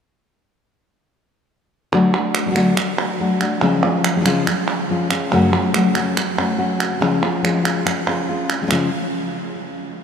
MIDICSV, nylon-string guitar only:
0, 0, Header, 1, 3, 480
1, 0, Start_track
1, 0, Tempo, 424929
1, 2171, Time_signature, 4, 2, 24, 8
1, 11338, End_track
2, 0, Start_track
2, 0, Title_t, "Nylon-string guitar"
2, 0, Program_c, 0, 24
2, 2171, Note_on_c, 0, 50, 96
2, 2182, Note_on_c, 0, 54, 93
2, 2186, Note_on_c, 0, 57, 90
2, 2189, Note_on_c, 0, 62, 108
2, 2194, Note_on_c, 0, 66, 97
2, 2398, Note_off_c, 0, 66, 0
2, 2402, Note_off_c, 0, 50, 0
2, 2408, Note_off_c, 0, 54, 0
2, 2410, Note_off_c, 0, 57, 0
2, 2411, Note_off_c, 0, 62, 0
2, 2411, Note_on_c, 0, 66, 57
2, 2427, Note_on_c, 0, 62, 55
2, 2430, Note_on_c, 0, 57, 49
2, 2774, Note_off_c, 0, 62, 0
2, 2776, Note_off_c, 0, 57, 0
2, 2779, Note_off_c, 0, 66, 0
2, 2779, Note_on_c, 0, 54, 54
2, 2788, Note_on_c, 0, 62, 59
2, 2789, Note_on_c, 0, 57, 65
2, 2792, Note_on_c, 0, 66, 70
2, 2818, Note_off_c, 0, 54, 0
2, 2819, Note_off_c, 0, 57, 0
2, 2830, Note_off_c, 0, 62, 0
2, 2830, Note_off_c, 0, 66, 0
2, 2832, Note_on_c, 0, 54, 80
2, 2833, Note_on_c, 0, 57, 71
2, 2844, Note_on_c, 0, 62, 71
2, 2844, Note_on_c, 0, 66, 86
2, 2875, Note_off_c, 0, 57, 0
2, 2877, Note_off_c, 0, 54, 0
2, 2877, Note_off_c, 0, 62, 0
2, 2877, Note_on_c, 0, 50, 87
2, 2883, Note_off_c, 0, 66, 0
2, 2888, Note_on_c, 0, 57, 92
2, 2891, Note_on_c, 0, 54, 95
2, 2891, Note_on_c, 0, 62, 93
2, 2896, Note_on_c, 0, 66, 102
2, 3109, Note_off_c, 0, 50, 0
2, 3110, Note_off_c, 0, 57, 0
2, 3110, Note_off_c, 0, 62, 0
2, 3114, Note_off_c, 0, 66, 0
2, 3115, Note_off_c, 0, 54, 0
2, 3611, Note_on_c, 0, 54, 65
2, 3618, Note_on_c, 0, 57, 62
2, 3622, Note_on_c, 0, 62, 63
2, 3625, Note_on_c, 0, 66, 73
2, 3838, Note_off_c, 0, 66, 0
2, 3843, Note_off_c, 0, 54, 0
2, 3844, Note_off_c, 0, 62, 0
2, 3847, Note_off_c, 0, 57, 0
2, 3851, Note_on_c, 0, 66, 62
2, 3858, Note_on_c, 0, 62, 58
2, 3870, Note_on_c, 0, 57, 55
2, 4083, Note_off_c, 0, 66, 0
2, 4086, Note_on_c, 0, 49, 87
2, 4087, Note_off_c, 0, 62, 0
2, 4088, Note_off_c, 0, 57, 0
2, 4089, Note_on_c, 0, 53, 110
2, 4092, Note_on_c, 0, 56, 108
2, 4106, Note_on_c, 0, 61, 95
2, 4106, Note_on_c, 0, 65, 121
2, 4308, Note_off_c, 0, 65, 0
2, 4317, Note_off_c, 0, 61, 0
2, 4321, Note_off_c, 0, 49, 0
2, 4322, Note_off_c, 0, 53, 0
2, 4322, Note_on_c, 0, 65, 64
2, 4324, Note_off_c, 0, 56, 0
2, 4331, Note_on_c, 0, 61, 58
2, 4344, Note_on_c, 0, 56, 52
2, 4689, Note_off_c, 0, 56, 0
2, 4700, Note_off_c, 0, 61, 0
2, 4700, Note_off_c, 0, 65, 0
2, 4701, Note_on_c, 0, 53, 65
2, 4702, Note_on_c, 0, 56, 58
2, 4714, Note_on_c, 0, 61, 64
2, 4714, Note_on_c, 0, 65, 57
2, 4738, Note_off_c, 0, 53, 0
2, 4744, Note_off_c, 0, 56, 0
2, 4745, Note_off_c, 0, 61, 0
2, 4751, Note_on_c, 0, 53, 79
2, 4752, Note_off_c, 0, 65, 0
2, 4757, Note_on_c, 0, 56, 81
2, 4758, Note_on_c, 0, 61, 75
2, 4765, Note_on_c, 0, 65, 89
2, 4794, Note_off_c, 0, 53, 0
2, 4796, Note_off_c, 0, 56, 0
2, 4799, Note_on_c, 0, 49, 97
2, 4801, Note_off_c, 0, 61, 0
2, 4802, Note_off_c, 0, 65, 0
2, 4807, Note_on_c, 0, 53, 96
2, 4810, Note_on_c, 0, 56, 95
2, 4814, Note_on_c, 0, 61, 101
2, 4816, Note_on_c, 0, 65, 100
2, 5037, Note_off_c, 0, 49, 0
2, 5041, Note_off_c, 0, 53, 0
2, 5042, Note_off_c, 0, 56, 0
2, 5044, Note_off_c, 0, 61, 0
2, 5045, Note_off_c, 0, 65, 0
2, 5531, Note_on_c, 0, 53, 72
2, 5534, Note_on_c, 0, 56, 62
2, 5540, Note_on_c, 0, 61, 71
2, 5554, Note_on_c, 0, 65, 68
2, 5747, Note_off_c, 0, 65, 0
2, 5760, Note_off_c, 0, 61, 0
2, 5760, Note_on_c, 0, 65, 66
2, 5761, Note_off_c, 0, 53, 0
2, 5763, Note_off_c, 0, 56, 0
2, 5773, Note_on_c, 0, 61, 59
2, 5784, Note_on_c, 0, 56, 55
2, 5995, Note_off_c, 0, 65, 0
2, 6002, Note_off_c, 0, 61, 0
2, 6007, Note_off_c, 0, 56, 0
2, 6013, Note_on_c, 0, 49, 99
2, 6015, Note_on_c, 0, 42, 92
2, 6018, Note_on_c, 0, 54, 112
2, 6022, Note_on_c, 0, 57, 101
2, 6022, Note_on_c, 0, 61, 109
2, 6031, Note_on_c, 0, 66, 114
2, 6226, Note_off_c, 0, 66, 0
2, 6237, Note_off_c, 0, 61, 0
2, 6240, Note_on_c, 0, 66, 66
2, 6241, Note_off_c, 0, 49, 0
2, 6242, Note_off_c, 0, 42, 0
2, 6244, Note_off_c, 0, 54, 0
2, 6246, Note_off_c, 0, 57, 0
2, 6250, Note_on_c, 0, 61, 57
2, 6261, Note_on_c, 0, 57, 56
2, 6267, Note_on_c, 0, 54, 51
2, 6465, Note_off_c, 0, 54, 0
2, 6474, Note_off_c, 0, 66, 0
2, 6475, Note_off_c, 0, 57, 0
2, 6478, Note_on_c, 0, 54, 68
2, 6480, Note_off_c, 0, 61, 0
2, 6489, Note_on_c, 0, 57, 72
2, 6501, Note_on_c, 0, 61, 70
2, 6501, Note_on_c, 0, 66, 73
2, 6712, Note_off_c, 0, 66, 0
2, 6713, Note_off_c, 0, 54, 0
2, 6718, Note_off_c, 0, 57, 0
2, 6721, Note_off_c, 0, 61, 0
2, 6726, Note_on_c, 0, 66, 65
2, 6734, Note_on_c, 0, 61, 59
2, 6739, Note_on_c, 0, 57, 49
2, 6746, Note_on_c, 0, 54, 47
2, 6956, Note_off_c, 0, 66, 0
2, 6960, Note_off_c, 0, 54, 0
2, 6960, Note_off_c, 0, 61, 0
2, 6963, Note_off_c, 0, 57, 0
2, 7204, Note_on_c, 0, 66, 64
2, 7214, Note_on_c, 0, 61, 68
2, 7216, Note_on_c, 0, 57, 60
2, 7228, Note_on_c, 0, 54, 49
2, 7424, Note_off_c, 0, 66, 0
2, 7434, Note_off_c, 0, 61, 0
2, 7435, Note_off_c, 0, 57, 0
2, 7437, Note_on_c, 0, 66, 63
2, 7440, Note_off_c, 0, 54, 0
2, 7447, Note_on_c, 0, 61, 60
2, 7448, Note_on_c, 0, 57, 62
2, 7454, Note_on_c, 0, 54, 53
2, 7910, Note_off_c, 0, 66, 0
2, 7912, Note_off_c, 0, 61, 0
2, 7913, Note_on_c, 0, 49, 99
2, 7914, Note_off_c, 0, 57, 0
2, 7915, Note_off_c, 0, 54, 0
2, 7919, Note_on_c, 0, 56, 106
2, 7920, Note_on_c, 0, 53, 102
2, 7925, Note_on_c, 0, 61, 101
2, 7935, Note_on_c, 0, 65, 106
2, 8144, Note_off_c, 0, 65, 0
2, 8148, Note_off_c, 0, 49, 0
2, 8151, Note_off_c, 0, 53, 0
2, 8151, Note_off_c, 0, 56, 0
2, 8154, Note_off_c, 0, 61, 0
2, 8158, Note_on_c, 0, 65, 65
2, 8175, Note_on_c, 0, 61, 53
2, 8180, Note_on_c, 0, 56, 51
2, 8386, Note_off_c, 0, 56, 0
2, 8388, Note_off_c, 0, 61, 0
2, 8389, Note_on_c, 0, 53, 73
2, 8390, Note_off_c, 0, 65, 0
2, 8399, Note_on_c, 0, 56, 74
2, 8401, Note_on_c, 0, 61, 74
2, 8407, Note_on_c, 0, 65, 79
2, 8611, Note_off_c, 0, 65, 0
2, 8625, Note_off_c, 0, 53, 0
2, 8625, Note_off_c, 0, 61, 0
2, 8625, Note_on_c, 0, 65, 62
2, 8630, Note_off_c, 0, 56, 0
2, 8639, Note_on_c, 0, 61, 54
2, 8646, Note_on_c, 0, 56, 47
2, 8863, Note_off_c, 0, 61, 0
2, 8863, Note_off_c, 0, 65, 0
2, 8864, Note_off_c, 0, 56, 0
2, 9114, Note_on_c, 0, 65, 54
2, 9127, Note_on_c, 0, 61, 57
2, 9136, Note_on_c, 0, 56, 50
2, 9347, Note_off_c, 0, 65, 0
2, 9353, Note_off_c, 0, 61, 0
2, 9358, Note_off_c, 0, 56, 0
2, 9361, Note_on_c, 0, 65, 64
2, 9369, Note_on_c, 0, 61, 52
2, 9382, Note_on_c, 0, 56, 53
2, 9730, Note_off_c, 0, 56, 0
2, 9736, Note_off_c, 0, 61, 0
2, 9737, Note_on_c, 0, 53, 55
2, 9739, Note_off_c, 0, 65, 0
2, 9743, Note_on_c, 0, 56, 69
2, 9750, Note_on_c, 0, 61, 64
2, 9753, Note_on_c, 0, 65, 65
2, 9778, Note_off_c, 0, 53, 0
2, 9781, Note_off_c, 0, 56, 0
2, 9790, Note_off_c, 0, 61, 0
2, 9790, Note_off_c, 0, 65, 0
2, 9792, Note_on_c, 0, 53, 82
2, 9795, Note_on_c, 0, 56, 73
2, 9803, Note_on_c, 0, 61, 78
2, 9804, Note_on_c, 0, 65, 86
2, 9828, Note_off_c, 0, 53, 0
2, 9832, Note_off_c, 0, 56, 0
2, 9835, Note_off_c, 0, 61, 0
2, 9841, Note_off_c, 0, 65, 0
2, 9841, Note_on_c, 0, 53, 102
2, 9844, Note_on_c, 0, 49, 92
2, 9846, Note_on_c, 0, 56, 103
2, 9849, Note_on_c, 0, 61, 113
2, 9854, Note_on_c, 0, 65, 101
2, 10032, Note_off_c, 0, 53, 0
2, 10033, Note_off_c, 0, 49, 0
2, 10034, Note_off_c, 0, 56, 0
2, 10035, Note_off_c, 0, 61, 0
2, 10038, Note_off_c, 0, 65, 0
2, 11338, End_track
3, 0, Start_track
3, 0, Title_t, "Muted nylon-string guitar strokes"
3, 3123, Note_on_c, 9, 29, 86
3, 3236, Note_off_c, 9, 29, 0
3, 5061, Note_on_c, 9, 29, 86
3, 5174, Note_off_c, 9, 29, 0
3, 6971, Note_on_c, 9, 29, 67
3, 7084, Note_off_c, 9, 29, 0
3, 8873, Note_on_c, 9, 29, 81
3, 8986, Note_off_c, 9, 29, 0
3, 11338, End_track
0, 0, End_of_file